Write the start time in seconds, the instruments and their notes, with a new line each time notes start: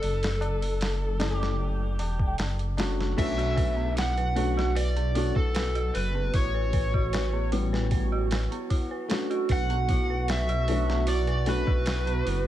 Already playing: electric slide guitar A4
0.02 detuned saw bass F#1, open hi-hat, tabla na
0.23 snare, open hi-hat
0.41 closed hi-hat, tabla na
0.62 open hi-hat, tabla na
0.81 snare, open hi-hat, tabla na
1.02 tabla na
1.19 felt piano A3 C#4 E4 A4, snare, open hi-hat, tabla na
1.37 electric slide guitar G4, tabla na
1.43 snare
1.59 tabla na
1.80 tabla na
1.99 detuned saw bass E1, open hi-hat, tabla na
2.19 kick, tabla na
2.38 detuned saw bass F#1, snare, open hi-hat, tabla na
2.59 closed hi-hat
2.77 felt piano A3 C#4 D4 F#4, snare, open hi-hat, tabla na
2.99 snare, tabla na
3.17 detuned saw bass B1, felt piano A3 C#4 D4 F#4, analog synth pad F#4, synth bell B4, electric slide guitar E5, kick, open hi-hat, crash
3.38 synth bell F#4, closed hi-hat
3.56 synth bell B4, kick, open hi-hat
3.77 synth bell B3
3.96 synth bell E4, electric slide guitar F#5, snare, open hi-hat
4.18 synth bell B4, closed hi-hat
4.35 felt piano A3 C#4 D4 F#4, synth bell B4, open hi-hat
4.57 synth bell F#4, snare
4.76 synth bell B4, electric slide guitar D5, open hi-hat
4.96 synth bell B3, closed hi-hat
5.15 felt piano A3 C#4 D4 F#4, synth bell E4, open hi-hat
5.35 detuned saw bass B1, electric slide guitar A4, synth bell B4, kick
5.54 synth bell B4, snare, open hi-hat
5.75 synth bell F#4, closed hi-hat
5.94 detuned saw bass F#1, synth bell B4, electric slide guitar B4, open hi-hat
6.15 synth bell B3
6.34 detuned saw bass A1, synth bell E4, electric slide guitar C#5, kick, open hi-hat
6.54 synth bell B4
6.73 synth bell B4, kick, open hi-hat
6.94 synth bell F#4, kick
7.13 synth bell B4, snare, open hi-hat
7.33 synth bell B3
7.52 felt piano G3 B3 C#4, synth bell E4, open hi-hat
7.73 synth bell B4, snare
7.91 synth bell B4, kick, open hi-hat
8.12 synth bell F#4
8.31 synth bell B4, snare, open hi-hat
8.52 synth bell B3, closed hi-hat
8.70 synth bell E4, kick, open hi-hat
8.91 synth bell B4
9.08 felt piano A3 C#4 D4, synth bell B4, snare, open hi-hat
9.13 felt piano F#4
9.30 synth bell F#4, closed hi-hat
9.49 detuned saw bass B1, synth bell B4, electric slide guitar F#5, kick, open hi-hat
9.70 synth bell B3, closed hi-hat
9.89 synth bell E4, kick, open hi-hat
10.10 synth bell B4
10.28 synth bell B4, electric slide guitar E5, snare, open hi-hat
10.49 synth bell F#4, closed hi-hat
10.68 felt piano A3 C#4 D4 F#4, synth bell B4, open hi-hat
10.88 synth bell B3, snare
11.07 synth bell E4, electric slide guitar D5, open hi-hat
11.27 synth bell B4, closed hi-hat
11.46 felt piano A3 C#4 D4 F#4, synth bell B4, electric slide guitar B4, open hi-hat
11.67 detuned saw bass B1, synth bell F#4, kick
11.86 synth bell B4, snare, open hi-hat
12.06 synth bell B3, closed hi-hat
12.25 detuned saw bass F#1, synth bell E4, open hi-hat